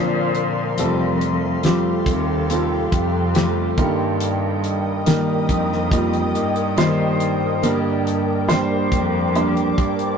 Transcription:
Already playing: A#2 D3 F3 A#3 C4 D4 A4 A#4 C5 D5 F5 C6
0.35 closed hi-hat
0.77 F2 C3 F3 G3 A3 C4 F4 G4 A4 F5 G5, closed hi-hat
1.21 closed hi-hat
1.63 F3 G3 A3 C4 F4 G4, snare, closed hi-hat
2.06 D#2 C4 F4 G4, kick, closed hi-hat
2.49 G3 A3 C4 F4 G4 A4, closed hi-hat
2.91 F2 C4 F4 G4, kick, closed hi-hat
3.34 F3 G3 A3 C4 F4 G4, snare, closed hi-hat
3.77 G2 D#3 G3 A#3 D#4 G4 A#4 D#5 D#6, kick, closed hi-hat
4.20 closed hi-hat
4.64 closed hi-hat
5.06 G2 D#3 G3 A#3 D#4 G4 A#4, snare, closed hi-hat
5.48 F2 G3 A#3 D#4 G4, kick, closed hi-hat
5.72 snare
5.91 G3 A#3 D#4 F4 G4, kick, closed hi-hat
6.13 closed hi-hat
6.34 G2 G3 A#3 D#4 G4, closed hi-hat
6.56 closed hi-hat
6.77 G2 D#3 G3 A#3 D#4 G4 C5, snare, closed hi-hat
7.20 closed hi-hat
7.62 G2 D3 G3 A#3 D4 G4 A#4 D5 D6, closed hi-hat
8.07 closed hi-hat
8.48 G2 D3 G3 A#3 D4 G4 C5, snare, closed hi-hat
8.91 F2 G3 A#3 D4 G4, kick, closed hi-hat
9.34 G3 A#3 D4 G4 C5, closed hi-hat
9.57 closed hi-hat
9.77 G2 G3 A#3 D4 G4, kick, closed hi-hat
9.99 closed hi-hat

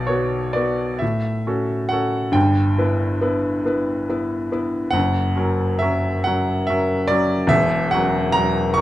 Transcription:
Already playing: B1 B2 D5
0.07 B3 F#4 C#5
0.53 B3 F#4 D5
0.99 A2 E5
1.47 C#4 F#4 A4
1.89 C#4 F#4 A4 F#5
2.32 G1 G2 G5
2.78 B3 E4 B4
3.21 B3 E4 B4
3.65 B3 E4 B4
4.09 B3 E4 B4
4.52 B3 E4 B4
4.91 F#1 F#2 F#5
5.37 F#3 C#4 A#4
5.79 F#3 C#4 A#4 E5
6.24 F#3 C#4 A#4 F#5
6.67 F#3 C#4 A#4 E5
7.08 F#3 C#4 A#4 D5
7.47 E1 E2 E5
7.91 F#3 C#4 A#4 F#5
8.32 F#3 C#4 A#4 A#5
8.74 F#3 C#4 A#4 C#6

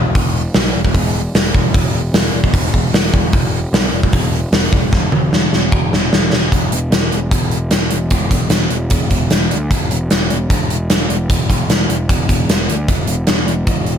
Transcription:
Already playing: E1
0.15 E1, kick, open hi-hat
0.54 B1, snare, open hi-hat
0.75 E1
0.85 kick
0.94 E1, kick, open hi-hat
1.35 E1, snare, open hi-hat
1.54 E1, kick
1.74 E1, kick, open hi-hat
1.93 E1
2.13 E1, snare, open hi-hat
2.34 E1
2.44 kick
2.53 E1, kick, open hi-hat
2.74 E1, kick
2.94 E1, snare, open hi-hat
3.14 E1, kick
3.33 E1, kick, open hi-hat
3.73 B1, snare, open hi-hat
3.92 E1
4.03 kick
4.13 E1, kick, open hi-hat
4.52 E1, snare, open hi-hat
4.73 E1, kick
4.93 E1, kick, snare
5.12 E1, high tom
5.32 E1, snare
5.53 E1, snare
5.72 E1, kick
5.93 E1, snare
6.13 E1, snare
6.33 E1, snare
6.52 E1, kick, closed hi-hat
6.72 E1, closed hi-hat
6.91 E1, snare, closed hi-hat
7.12 E1, closed hi-hat
7.31 E1, kick, closed hi-hat
7.51 closed hi-hat
7.71 E1, snare, closed hi-hat
7.90 E1, closed hi-hat
8.10 E1, kick, closed hi-hat
8.31 E1, kick, closed hi-hat
8.50 E1, snare, closed hi-hat
8.70 E1, closed hi-hat
8.90 E1, kick, closed hi-hat
9.10 E1, kick, closed hi-hat
9.30 E1, snare, closed hi-hat
9.51 D2, closed hi-hat
9.71 E1, kick, closed hi-hat
9.91 E1, closed hi-hat
10.10 E1, snare, closed hi-hat
10.30 E1, closed hi-hat
10.50 E1, kick, closed hi-hat
10.70 closed hi-hat
10.90 E1, snare, closed hi-hat
11.10 E1, closed hi-hat
11.30 E1, kick, closed hi-hat
11.50 E1, kick, closed hi-hat
11.69 E1, snare, closed hi-hat
11.90 E1, closed hi-hat
12.09 E1, kick, closed hi-hat
12.29 E1, kick, closed hi-hat
12.49 E1, snare, closed hi-hat
12.68 D2, closed hi-hat
12.88 E1, kick, closed hi-hat
13.07 E1, closed hi-hat
13.27 E1, snare, closed hi-hat
13.47 E1, closed hi-hat
13.67 E1, kick, closed hi-hat
13.86 closed hi-hat

